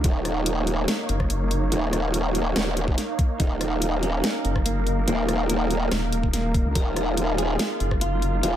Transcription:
Already playing: supersaw synth A#3 D#4, ambient pad D#4 A#4 F5
0.04 wobble bass D#1, supersaw synth C#5, kick, closed hi-hat
0.25 cross-stick, closed hi-hat
0.46 closed hi-hat
0.67 closed hi-hat
0.88 snare, closed hi-hat
1.09 wobble bass F#1, closed hi-hat
1.20 kick, cross-stick
1.30 closed hi-hat
1.51 closed hi-hat
1.72 wobble bass D#1, closed hi-hat
1.93 cross-stick, closed hi-hat
2.14 closed hi-hat
2.35 closed hi-hat
2.56 wobble bass D#1, cross-stick, snare, closed hi-hat
2.77 closed hi-hat
2.88 kick
2.98 snare, closed hi-hat
3.19 kick, closed hi-hat
3.40 wobble bass D#1, clean electric guitar D#4, supersaw synth A#4, kick, closed hi-hat
3.61 cross-stick, closed hi-hat
3.82 closed hi-hat
4.03 clean electric guitar C#4, closed hi-hat
4.24 snare, closed hi-hat
4.45 wobble bass F#1, closed hi-hat
4.56 kick, cross-stick
4.66 clean electric guitar A#3, closed hi-hat
4.87 closed hi-hat
5.08 wobble bass D#1, clean electric guitar A#3, closed hi-hat
5.29 cross-stick, closed hi-hat
5.50 clean electric guitar A#3, closed hi-hat
5.71 closed hi-hat
5.92 wobble bass D#1, cross-stick, snare, closed hi-hat
6.12 closed hi-hat
6.23 kick
6.33 wobble bass D#1, clean electric guitar A#3, snare, closed hi-hat
6.54 kick, closed hi-hat
6.65 wobble bass C#2
6.75 wobble bass D#1, supersaw synth F4, clean electric guitar A#4, kick, closed hi-hat
6.96 cross-stick, closed hi-hat
7.17 closed hi-hat
7.38 clean electric guitar G#4, closed hi-hat
7.59 snare, closed hi-hat
7.80 wobble bass F#1, closed hi-hat
7.91 kick, cross-stick
8.01 clean electric guitar F4, closed hi-hat
8.22 closed hi-hat
8.43 wobble bass D#1, clean electric guitar F4, closed hi-hat

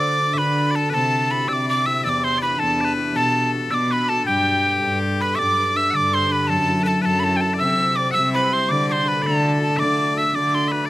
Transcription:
Already playing: cello D3, harp D3 A3 F#4 A4 B4 C5 D5, bagpipes D5, tin whistle D6
0.19 harp D4 F#4 A4
0.33 harp D4 F#4, bagpipes E5
0.37 cello D3, harp A4, bagpipes B4, tin whistle B5
0.71 bagpipes D5
0.75 harp D4 F#4 A4, bagpipes A4, tin whistle A5
0.90 harp C3, bagpipes B4, tin whistle A5
0.94 cello C3, bagpipes A4
1.31 harp C4 E4 G4, tin whistle B5
1.48 cello C3, harp C4 E4 G4, bagpipes D5, tin whistle E6
1.53 tin whistle D6
1.69 tin whistle D6
1.85 harp C4 E4 G4, bagpipes E5, tin whistle E6
2.04 cello E2, harp E3, bagpipes D5, tin whistle E6
2.09 tin whistle D6
2.24 bagpipes C5, tin whistle C6
2.38 harp D4 E4 G4, bagpipes D5
2.42 bagpipes B4, tin whistle B5
2.59 cello E2, harp D4 E4 G4, bagpipes A4, tin whistle A5
2.81 bagpipes B4 D5
2.98 harp D4 E4 G4
3.15 harp B2, cello B2, bagpipes A4, tin whistle A5
3.53 harp B3 D4 F#4
3.70 cello B2, harp B3 D4, bagpipes D5, tin whistle E6
3.74 harp F#4, tin whistle D6
3.91 bagpipes B4, tin whistle B5
4.09 harp B3 D4 F#4, bagpipes A4, tin whistle A5
4.26 cello G2, harp G3, bagpipes G4, tin whistle G5
4.65 harp G4 A4 B4
4.82 cello G2, harp G4 A4 B4
5.20 harp G4 A4 B4, bagpipes B4, tin whistle B5
5.35 cello G2, harp G3, bagpipes D5 E5, tin whistle D6
5.57 harp D4 G4 B4
5.75 harp D4 G4 B4, bagpipes E5, tin whistle E6
5.91 harp D3, bagpipes D5 F#5, tin whistle E6
5.95 cello G2, tin whistle D6
6.12 harp D4 G4 B4, bagpipes C5, tin whistle C6
6.28 harp D4 G4, bagpipes B4, tin whistle B5
6.33 harp B4
6.47 cello F#2, harp F#3, bagpipes A4, tin whistle A5
6.68 harp E4 F#4 A4
6.83 harp E4, bagpipes B4, tin whistle A5
6.87 harp F#4 A4, bagpipes A4
7.02 cello F#2, harp F#3, bagpipes A4 B4, tin whistle A5
7.20 tin whistle B5
7.24 harp E4 F#4 A4, tin whistle A5
7.37 tin whistle G5
7.41 harp E4 F#4 A4, tin whistle A5
7.54 bagpipes D5
7.58 harp C3, cello C3, bagpipes E5, tin whistle E6
7.79 harp E4 G4 C5
7.96 harp E4 G4 C5, bagpipes D5, tin whistle D6
8.11 cello C3, harp G3, bagpipes E5 F#5, tin whistle E6
8.33 harp E4 G4 C5, bagpipes B4, tin whistle B5
8.52 harp E4 G4 C5, bagpipes C5, tin whistle C6
8.69 harp D3, cello D3, bagpipes D5, tin whistle D6
8.89 harp D4 F#4 A4, bagpipes C5, tin whistle C6 D6
9.06 harp D4 F#4 A4, bagpipes B4, tin whistle B5
9.22 cello D3, harp A3, bagpipes D5, tin whistle A5
9.26 bagpipes A4
9.44 harp D4 F#4 A4
9.61 harp D4 F#4 A4, tin whistle A5
9.76 cello D3, harp A3, bagpipes D5 E5, tin whistle D6
10.16 harp D4 F#4 A4, bagpipes E5, tin whistle E6
10.34 cello D3, harp A3, bagpipes D5, tin whistle D6
10.54 harp D4 F#4 A4, tin whistle C6
10.67 harp D4, bagpipes E5, tin whistle C6
10.71 harp F#4 A4, bagpipes B4, tin whistle B5
10.86 bagpipes D5

